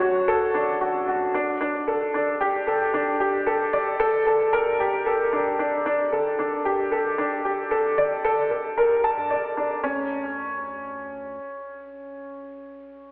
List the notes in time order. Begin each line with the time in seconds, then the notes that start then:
Already playing: C#4 D4 C#5
0.00 D2 F#4
0.28 A4
0.54 D2 D4
0.68 A1
0.81 F#4
1.08 D2 F#4
1.34 D4
1.61 G1 D4
1.88 A4
2.14 G1 D4
2.41 G4
2.67 G1 A4
2.81 G1
2.94 D4
3.20 G1 G4
3.47 A4
3.73 G1 D5
4.00 A4
4.26 G1 A4
4.53 A#4
4.79 G1 G4
4.93 G1
5.06 A4
5.32 G1 D4
5.59 D4
5.86 G1 D4
6.12 A4
6.39 G1 D4
6.65 G4
6.92 G1 A4
7.05 G1
7.18 D4
7.45 G1 G4
7.71 A4
7.98 G1 D5
8.25 A4
8.51 G1 A4
8.78 A#4
9.04 G1 A5
9.17 G2
9.31 D5
9.57 G1 D4
9.83 D2 C#4